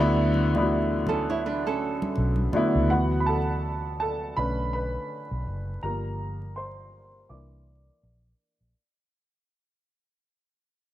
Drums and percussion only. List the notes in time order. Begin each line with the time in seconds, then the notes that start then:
0.34 muted conga, high conga
0.55 high conga
1.07 high conga, low conga
2.02 high conga
2.16 muted conga
2.36 high conga
2.53 muted conga, low conga